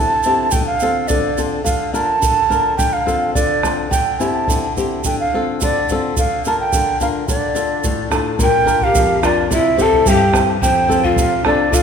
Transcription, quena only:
0.00 0.53 A5 loud
0.52 0.66 G5 medium
0.66 1.09 F5 medium
1.08 1.51 D5 medium
1.64 1.91 F5 loud
1.94 2.75 A5 loud
2.77 2.95 G5 medium
2.93 3.34 F5 medium
3.34 3.74 D5 medium
3.91 4.21 G5 medium
4.19 4.78 A5 medium
5.06 5.18 G5 medium
5.20 5.59 F5 medium
5.63 6.01 D5 medium
6.18 6.44 F5 medium
6.46 6.59 A5 medium
6.60 6.98 G5 loud
7.02 7.08 F5 medium
7.28 8.08 D5 medium
8.43 8.85 G5 loud
8.84 9.27 F5 loud
9.25 9.52 D5 medium
9.52 9.83 E5 loud
9.82 10.09 A5 loud
10.08 10.49 G5 loud
10.62 11.06 G5 loud
11.05 11.46 F5 loud
11.47 11.76 D5 medium
11.74 11.83 F5 loud

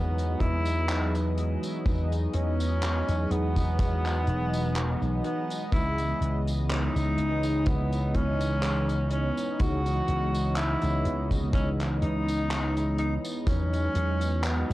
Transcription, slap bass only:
0.00 0.40 E2 medium
0.41 1.55 E2 medium
1.86 2.26 E2 loud
2.34 3.01 E2 medium
3.09 3.27 E2 loud
3.31 4.27 E2 medium
4.27 4.94 E1 medium
5.02 5.20 B1 medium
5.72 6.12 C#2 loud
6.21 6.88 C#2 medium
6.95 7.14 C#2 loud
7.17 8.14 C#2 medium
8.15 9.30 C#2 medium
9.60 10.00 C#2 loud
10.08 10.75 C#2 medium
10.83 11.01 C#2 loud
11.05 12.01 C#2 medium
12.02 13.17 C#2 medium
13.47 13.87 E2 loud
13.96 14.62 E2 medium
14.70 14.73 E2 loud

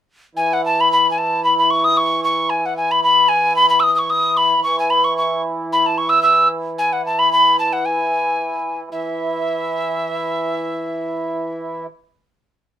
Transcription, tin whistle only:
0.37 0.55 G#5 medium
0.53 0.64 F#5 medium
0.65 0.82 A5 medium
0.81 0.91 B5 medium
0.92 1.10 B5 medium
1.11 1.19 G#5 medium
1.18 1.44 A5 medium
1.44 1.57 B5 medium
1.58 1.72 B5 medium
1.70 1.86 C#6 medium
1.84 1.99 D#6 loud
1.97 2.23 C#6 loud
2.24 2.51 C#6 medium
2.50 2.67 G#5 medium
2.66 2.76 F#5 medium
2.77 2.93 G#5 medium
2.91 3.03 B5 medium
3.03 3.30 B5 medium
3.29 3.55 G#5 medium
3.56 3.69 B5 loud
3.70 3.81 B5 medium
3.80 3.94 D#6 medium
3.80 3.85 E6 medium
3.95 4.11 C#6 medium
3.95 4.00 D#6 medium
4.10 4.38 D#6 medium
4.37 4.63 B5 medium
4.63 4.77 C#6 medium
4.79 4.92 G#5 medium
4.90 5.06 B5 medium
5.04 5.17 C#6 medium
5.18 5.42 C#6 medium
5.72 5.88 B5 medium
5.86 5.99 A5 medium
5.98 6.11 C#6 medium
6.09 6.22 E6 loud
6.23 6.48 E6 medium
6.78 6.94 G#5 medium
6.93 7.04 F#5 medium
7.06 7.20 A5 medium
7.19 7.31 B5 loud
7.32 7.57 B5 loud
7.59 7.74 A5 medium
7.73 7.87 F#5 medium
7.85 8.80 G#5 medium
8.92 11.84 E5 medium

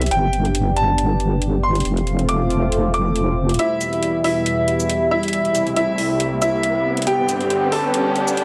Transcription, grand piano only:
0.11 0.69 G5 medium
0.76 1.56 A5 medium
1.63 2.21 C6 medium
2.29 2.86 D6 medium
2.94 3.51 D6 medium
3.59 4.16 E4 medium
3.59 4.16 E5 medium
4.24 5.03 E4 medium
4.24 5.03 E5 medium
5.11 5.69 E4 medium
5.11 5.69 E5 medium
5.76 6.34 E4 medium
5.76 6.34 E5 medium
6.42 6.99 E4 medium
6.42 6.99 E5 medium
7.07 7.64 G4 medium
7.07 7.64 G5 loud
7.72 8.44 A4 medium
7.72 8.44 A5 medium

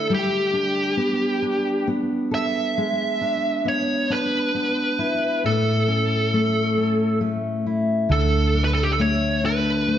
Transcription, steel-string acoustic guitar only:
0.00 0.93 D3 soft
0.00 0.97 A3 soft
0.00 0.53 D4 soft
0.00 0.19 E4 soft
0.10 2.77 G3 medium
0.53 1.42 D4 soft
0.97 1.87 B3 soft
1.42 3.21 D4 soft
1.87 3.65 B3 soft
2.31 2.85 A4 soft
2.78 5.44 G#3 medium
3.21 4.09 D4 soft
3.65 4.54 B3 soft
4.10 5.53 D4 soft
4.55 5.53 B3 soft
4.99 7.66 E4 soft
5.44 8.11 A2 medium
5.88 6.76 C#4 soft
6.34 7.20 A3 soft
6.77 8.20 C#4 soft
7.21 8.99 A3 soft
7.66 8.20 E4 soft
8.09 9.98 D3 medium
8.55 9.42 D4 soft
8.99 9.86 A3 soft
9.44 9.98 D4 soft
9.87 9.98 A3 soft

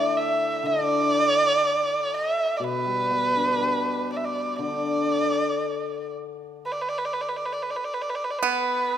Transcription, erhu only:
0.00 0.18 D5 medium
0.17 0.68 E5 medium
0.67 2.16 D5 loud
2.14 2.59 E5 medium
2.57 2.66 D5 medium
2.64 4.11 B4 medium
4.12 4.18 D5 medium
4.17 4.27 E5 medium
4.25 4.60 D5 medium
4.61 6.10 D5 medium
6.66 6.73 B4 medium
6.72 6.83 D5 medium
6.81 6.90 B4 medium
6.89 7.00 D5 medium
6.98 7.07 B4 medium
7.05 7.15 D5 medium
7.14 7.23 B4 medium
7.21 7.30 D5 medium
7.29 7.38 B4 medium
7.37 7.47 D5 medium
7.45 7.55 B4 medium
7.53 7.64 D5 medium
7.63 7.72 B4 medium
7.70 7.78 D5 medium
7.76 7.86 B4 medium
7.84 7.95 D5 medium
7.94 8.03 B4 medium
8.02 8.11 D5 medium
8.10 8.17 B4 medium
8.15 8.26 D5 medium
8.24 8.32 B4 medium
8.30 8.40 D5 medium
8.39 8.98 B4 medium

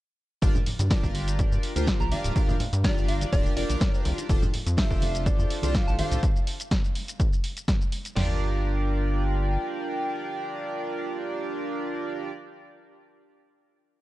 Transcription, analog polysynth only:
0.42 0.55 D4 loud
0.42 0.55 F4 medium
0.42 0.55 G4 medium
0.42 0.55 A#4 medium
0.42 0.56 D5 loud
0.90 1.73 D4 medium
0.90 1.73 F4 medium
0.90 1.73 G4 medium
0.90 1.73 A#4 medium
0.90 1.73 D5 medium
1.76 2.09 D4 medium
1.76 2.09 F4 medium
1.76 2.09 G4 medium
1.76 2.09 A#4 medium
1.76 2.09 C5 medium
2.11 2.33 D4 medium
2.11 2.33 F4 medium
2.11 2.33 G4 medium
2.11 2.33 A#4 medium
2.11 2.33 D5 medium
2.35 2.56 D4 medium
2.35 2.56 F4 medium
2.35 2.56 G4 medium
2.35 2.56 A#4 medium
2.35 2.56 D5 loud
2.84 3.30 D4 loud
2.84 3.30 F4 medium
2.84 3.30 G4 medium
2.84 3.30 A#4 medium
2.84 3.30 D5 loud
3.32 3.52 D4 loud
3.32 3.53 F4 medium
3.32 3.53 G4 medium
3.32 3.53 A#4 medium
3.32 3.53 D5 loud
3.56 4.26 D4 medium
3.56 4.26 F4 medium
3.56 4.27 G4 medium
3.56 4.27 A#4 medium
3.56 4.27 D5 medium
4.29 4.42 D4 loud
4.29 4.42 F4 medium
4.29 4.43 G4 medium
4.29 4.43 A4 medium
4.29 4.43 C5 loud
4.77 5.60 D4 medium
4.77 5.60 F4 medium
4.77 5.60 G4 medium
4.77 5.60 A4 medium
4.77 5.60 C5 medium
5.63 5.96 D4 medium
5.63 5.96 F4 medium
5.63 5.96 G4 medium
5.63 5.96 A4 medium
5.63 5.96 C5 medium
5.98 6.20 D4 medium
5.98 6.20 F4 medium
5.98 6.20 G4 medium
5.98 6.20 A4 medium
5.98 6.20 C5 loud
8.15 12.30 D4 medium
8.15 12.30 F4 medium
8.15 12.30 G4 medium
8.15 12.31 A#4 medium
8.15 12.31 D5 loud

